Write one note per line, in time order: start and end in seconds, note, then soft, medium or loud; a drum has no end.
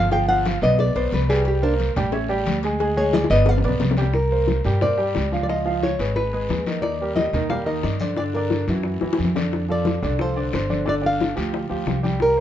0.00 0.57 G1 loud
0.00 0.11 F5 loud
0.11 0.25 F3 medium
0.11 0.26 F4 medium
0.11 0.26 F5 loud
0.11 0.28 G5 loud
0.11 cowbell loud
0.11 long guiro medium
0.29 0.56 F3 medium
0.29 0.57 F4 medium
0.29 0.57 F5 loud
0.29 0.47 F#5 loud
0.29 high conga soft
0.45 0.63 F5 loud
0.45 cowbell medium
0.45 high conga medium
0.45 short guiro medium
0.61 0.93 B1 loud
0.61 0.90 B3 medium
0.61 0.90 B4 medium
0.61 0.90 D5 medium
0.61 0.79 D#5 loud
0.61 high conga soft
0.61 short guiro medium
0.79 0.96 D5 loud
0.79 cowbell loud
0.79 long guiro medium
0.96 1.11 B1 medium
0.96 1.23 B3 medium
0.96 1.23 B4 medium
0.96 1.12 C5 medium
0.96 1.24 D5 medium
0.96 cowbell medium
0.96 high conga soft
1.12 1.91 C2 loud
1.12 1.30 B4 medium
1.12 cowbell medium
1.12 high conga medium
1.12 short guiro medium
1.29 1.57 G3 medium
1.29 1.57 G4 medium
1.29 1.46 G#4 loud
1.29 1.57 G5 medium
1.29 short guiro medium
1.45 1.63 G4 medium
1.45 cowbell loud
1.45 high conga soft
1.45 long guiro medium
1.62 1.90 A#3 medium
1.62 1.73 D4 medium
1.62 1.90 A#4 medium
1.62 1.90 C5 medium
1.62 high conga soft
1.80 cowbell medium
1.80 high conga medium
1.80 short guiro medium
1.96 2.43 A1 medium
1.96 2.10 G3 loud
1.96 2.10 G4 medium
1.96 2.11 G5 medium
1.96 cowbell medium
1.96 low conga medium
1.96 short guiro medium
2.12 2.26 C#4 medium
2.12 2.27 C#5 medium
2.12 2.27 E5 medium
2.12 cowbell loud
2.12 high conga soft
2.12 long guiro medium
2.29 2.57 G3 loud
2.29 2.57 G4 medium
2.29 2.57 G5 medium
2.29 high conga soft
2.46 3.25 D2 loud
2.46 cowbell medium
2.46 high conga medium
2.46 short guiro medium
2.63 2.77 G#3 medium
2.63 2.78 G#4 medium
2.63 2.78 G#5 medium
2.63 cowbell medium
2.63 short guiro medium
2.79 2.94 G#3 loud
2.79 2.94 G#4 medium
2.79 2.94 G#5 medium
2.79 cowbell loud
2.79 high conga soft
2.79 long guiro medium
2.97 3.24 G#3 medium
2.97 3.25 G#4 loud
2.97 3.14 C#5 medium
2.97 3.25 G#5 medium
2.97 high conga soft
3.13 3.30 D5 loud
3.13 cowbell medium
3.13 high bongo loud
3.13 high conga loud
3.13 short guiro medium
3.24 high bongo loud
3.30 3.61 G1 loud
3.30 3.59 B3 medium
3.30 3.59 B4 medium
3.30 3.59 D5 medium
3.30 3.49 D#5 loud
3.30 high conga soft
3.30 short guiro medium
3.46 3.59 F5 loud
3.46 cowbell loud
3.46 low bongo medium
3.46 high conga soft
3.46 long guiro medium
3.58 low bongo medium
3.64 3.80 B1 medium
3.64 3.92 B3 loud
3.64 3.92 B4 medium
3.64 3.92 D5 medium
3.64 cowbell medium
3.64 high conga soft
3.69 low bongo medium
3.80 4.59 C2 loud
3.80 cowbell medium
3.80 low bongo medium
3.80 high conga medium
3.80 short guiro medium
3.91 low bongo loud
3.97 4.11 G3 medium
3.97 4.12 G4 medium
3.97 4.12 G5 medium
3.97 short guiro medium
4.02 low bongo medium
4.13 4.84 A#4 medium
4.13 high bongo medium
4.13 high conga soft
4.13 long guiro medium
4.31 4.59 A#3 medium
4.31 4.59 A#4 medium
4.31 4.59 C5 medium
4.31 high conga soft
4.47 high bongo medium
4.47 high conga medium
4.47 short guiro medium
4.64 5.12 G2 medium
4.64 4.79 G3 medium
4.64 4.79 G4 medium
4.64 4.79 G5 medium
4.64 high conga soft
4.64 low conga medium
4.64 short guiro medium
4.81 4.95 A#3 medium
4.81 4.96 A#4 medium
4.81 4.96 C5 medium
4.81 5.42 D5 medium
4.81 high bongo medium
4.81 high conga soft
4.81 low conga medium
4.81 long guiro medium
4.98 5.26 G3 medium
4.98 5.26 G4 medium
4.98 5.26 G5 medium
4.98 high conga soft
5.15 5.94 C#2 medium
5.15 high bongo medium
5.15 low bongo medium
5.15 high conga soft
5.15 short guiro medium
5.32 5.46 F3 medium
5.32 5.46 F4 medium
5.32 5.47 F5 medium
5.32 high conga medium
5.32 short guiro medium
5.43 5.49 D5 medium
5.49 5.63 F3 medium
5.49 5.63 F4 medium
5.49 5.83 D#5 medium
5.49 5.63 F5 medium
5.49 high bongo medium
5.49 high conga soft
5.49 long guiro medium
5.65 5.93 F3 medium
5.65 5.93 F4 medium
5.65 5.94 F5 medium
5.65 high bongo soft
5.65 high conga soft
5.83 6.14 C#5 medium
5.83 high bongo medium
5.83 high conga medium
5.83 short guiro medium
5.99 6.46 G#1 medium
5.99 6.27 G#3 medium
5.99 6.27 G#4 medium
5.99 6.27 B4 medium
5.99 high bongo soft
5.99 high conga soft
5.99 short guiro medium
6.16 6.63 B4 medium
6.16 high bongo medium
6.16 high conga soft
6.16 long guiro medium
6.33 6.60 G#3 medium
6.33 6.61 G#4 medium
6.33 6.61 B4 medium
6.33 high conga soft
6.49 7.28 D#2 medium
6.49 high bongo medium
6.49 low bongo medium
6.49 high conga medium
6.49 short guiro medium
6.66 6.94 D#3 medium
6.66 6.94 D#4 medium
6.66 6.95 D#5 medium
6.66 high bongo soft
6.66 high conga medium
6.66 short guiro medium
6.82 7.15 D5 medium
6.82 high bongo medium
6.82 high conga soft
6.82 long guiro medium
7.00 7.28 G3 medium
7.00 7.29 G4 medium
7.00 7.29 A#4 medium
7.00 high conga soft
7.16 7.50 D#5 medium
7.16 high bongo medium
7.16 high conga medium
7.16 short guiro medium
7.33 7.80 D#2 medium
7.33 7.48 D#3 medium
7.33 7.48 D#4 medium
7.33 7.48 D#5 medium
7.33 high conga soft
7.33 low conga medium
7.33 short guiro medium
7.50 7.65 G3 medium
7.50 7.65 G4 medium
7.50 7.65 A#4 medium
7.50 7.66 F5 medium
7.50 high bongo medium
7.50 high conga soft
7.50 low conga medium
7.50 long guiro medium
7.66 7.94 D#3 medium
7.66 7.94 D#4 medium
7.66 7.84 D#5 medium
7.66 7.95 D#5 medium
7.66 high conga soft
7.83 8.62 G2 medium
7.83 7.99 D5 medium
7.83 high bongo medium
7.83 low bongo medium
7.83 high conga soft
7.83 short guiro medium
7.99 8.15 D3 medium
7.99 8.15 D4 medium
7.99 8.17 C5 medium
7.99 8.15 D5 medium
7.99 high conga medium
7.99 short guiro medium
8.16 8.32 D3 medium
8.16 8.32 D4 medium
8.16 8.22 D5 medium
8.16 8.33 D5 medium
8.16 high bongo medium
8.16 long guiro medium
8.33 8.63 D3 medium
8.33 8.63 D4 medium
8.33 8.66 A#4 medium
8.33 8.63 D5 medium
8.33 high bongo soft
8.33 high conga soft
8.50 high bongo medium
8.50 high conga medium
8.50 short guiro medium
8.67 8.99 F#2 medium
8.67 8.97 E3 medium
8.67 8.96 E4 medium
8.67 8.97 F#4 medium
8.67 high bongo soft
8.67 short guiro medium
8.83 high bongo medium
8.83 high conga soft
8.83 long guiro medium
9.01 9.17 F#2 medium
9.01 9.29 E3 medium
9.01 9.29 E4 medium
9.01 9.29 F#4 medium
9.01 high bongo medium
9.01 high conga soft
9.13 high bongo loud
9.18 9.97 F2 medium
9.18 high conga medium
9.18 short guiro medium
9.24 low bongo medium
9.35 9.63 D3 medium
9.35 9.63 D4 medium
9.35 9.63 D5 medium
9.35 low bongo medium
9.35 high conga medium
9.35 short guiro medium
9.52 high bongo medium
9.52 high conga soft
9.52 long guiro medium
9.69 9.96 F3 medium
9.69 9.97 F4 medium
9.69 9.97 A4 medium
9.69 10.17 D5 medium
9.69 high conga soft
9.85 high bongo medium
9.85 high conga loud
9.85 short guiro medium
10.02 10.49 C2 medium
10.02 10.16 D3 medium
10.02 10.17 D4 medium
10.02 10.17 D5 medium
10.02 high conga soft
10.02 low conga medium
10.02 short guiro medium
10.19 10.34 F3 medium
10.19 10.34 F4 medium
10.19 10.34 A4 medium
10.19 10.54 C5 medium
10.19 high bongo medium
10.19 high conga soft
10.19 long guiro medium
10.36 10.64 D3 medium
10.36 10.64 D4 medium
10.36 10.64 D5 medium
10.36 high conga soft
10.53 11.31 G1 medium
10.53 10.88 C5 medium
10.53 high bongo medium
10.53 low bongo medium
10.53 high conga soft
10.53 short guiro medium
10.70 10.84 D3 medium
10.70 10.84 D4 medium
10.70 10.84 D5 medium
10.70 high conga medium
10.70 short guiro medium
10.85 11.00 D3 medium
10.85 11.00 D4 medium
10.85 11.00 D5 medium
10.85 10.94 D5 medium
10.85 high bongo medium
10.85 long guiro medium
11.02 11.30 D3 medium
11.02 11.30 D4 medium
11.02 11.30 D5 medium
11.02 high bongo soft
11.02 high conga soft
11.06 12.02 F5 loud
11.20 high bongo medium
11.20 high conga medium
11.20 short guiro medium
11.36 11.68 D2 medium
11.36 11.64 F3 medium
11.36 11.64 F4 medium
11.36 11.64 G4 medium
11.36 high bongo soft
11.36 high conga soft
11.36 short guiro medium
11.53 high bongo medium
11.53 high conga soft
11.53 long guiro medium
11.69 11.85 D2 medium
11.69 11.97 F3 medium
11.69 11.98 F4 medium
11.69 11.98 G4 medium
11.69 high conga soft
11.86 12.40 C2 medium
11.86 high bongo medium
11.86 low bongo medium
11.86 high conga medium
11.86 short guiro medium
12.03 12.31 G3 medium
12.03 12.31 G4 medium
12.03 12.31 G5 medium
12.03 high bongo soft
12.03 high conga medium
12.03 short guiro medium
12.20 12.40 A#4 medium
12.20 high bongo medium
12.20 long guiro medium
12.37 12.40 A#3 medium
12.37 12.40 C5 medium
12.37 high conga soft